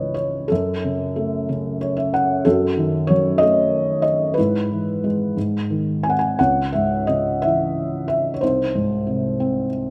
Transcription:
Already playing: C#2 G#2 C#3 E3 B4 C#5 D#5
0.14 C#5
0.48 F#2 C#4 A4
0.84 C#3
1.16 A3
1.49 C#3
1.81 C#5
1.97 E5
2.14 F#5
2.45 F#2 F#4 A4
2.77 D#3
3.07 F#3 C#5
3.38 A3 D#5
4.02 D#5
4.34 E4 B4
4.39 G#2
4.71 E3
5.04 G#3
5.37 G#2
5.70 D#3
6.03 C4 G#5
6.10 F#5
6.19 G#5
6.39 C#2 C#5 F#5
6.73 G#2 E5
7.07 C#3 D#5
7.42 E3 E5
8.08 E5
8.34 C#5
8.41 C2 D#4 C5
8.75 G#2
9.07 C3
9.40 C4

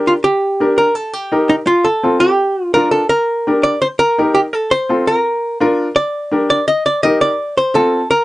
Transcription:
Already playing: D4 G4 A#4
0.07 F4
0.24 G4
0.60 D4 G4 A#4
0.78 A#4
0.95 A4
1.13 G4
1.32 D#4 G4 A#4
1.49 D#4
1.67 F4
1.84 A4
2.03 C4 F4 A4
2.20 G4
2.74 D4 F4 A#4
2.91 A4
3.09 A#4
3.47 D4 G4 A#4
3.63 D5
3.82 C5
3.99 A#4
4.18 D#4 G4 A#4
4.35 G4
4.53 A4
4.71 C5
4.89 C4 F4 A4
5.07 A#4
5.60 D4 F4 A#4
5.96 D5
6.31 D4 G4 A#4
6.50 D5
6.68 D#5
6.86 D5
7.03 D#4 G4 A#4 D#5
7.21 D5
7.57 C5
7.75 C4 F4 A4
8.11 A#4

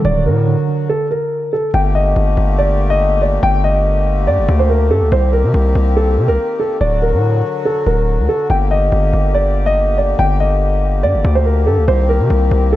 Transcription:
0.05 D1 D3 F#3 F#4 D5
0.26 A2 D3 A#4
0.47 D3
0.68 D3
0.89 A4
1.11 A#4
1.53 A4
1.74 G1 D3 A3 A#3 G4 G5
1.95 D#5
2.16 G1
2.37 G1
2.58 D5
2.90 D#5
3.22 D5
3.43 G1 G5
3.64 D#5
4.27 G2 D5
4.38 G1
4.49 D2
4.59 C5
4.70 A#4
4.91 G2 A4
5.01 D2
5.12 C2 D#3 C4 C5
5.33 A#4
5.44 C3
5.54 C2
5.75 C2
5.97 A4
6.18 C3
6.28 C2 A#4
6.60 A4
6.81 D1 D3 F#3 F#4 D5
7.02 A#4
7.13 A2
7.65 A4
7.87 D1 A#4
8.18 D2
8.29 A4
8.50 G1 A#3 G4 G5
8.71 D#5
8.92 G1
9.13 G1
9.34 D5
9.66 D#5
9.98 D5
10.19 G1 G5
10.40 D#5
11.03 G2 D5
11.14 G1
11.25 D2
11.35 C5
11.46 A#4
11.67 G2 A4
11.77 D2
11.88 C2 D#3 C4 G4 C5
12.09 A#4
12.20 C3
12.30 C2
12.51 C2
12.73 A4

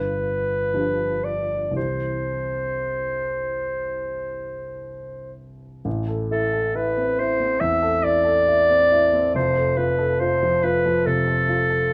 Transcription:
Already playing: G1 G2 B4
0.74 F3 D4 G4
1.24 D5
1.71 C2 E3 C4
1.75 G4 C5
5.85 A1
6.08 A4
6.31 E4 A4
6.53 A4
6.75 E4 B4
6.97 C4
7.19 E4 C5
7.40 C4
7.60 E2 E5
7.83 A4
8.03 E4 D5
8.25 A4
8.47 E4
8.69 C4
8.92 E4
9.13 C4
9.34 F1 F2 C5
9.56 A4
9.77 F4 B4
9.99 A4
10.20 F4 C5
10.43 F3
10.63 F4 B4
10.86 F3
11.06 C3 A4
11.27 A4
11.49 F4
11.70 A4

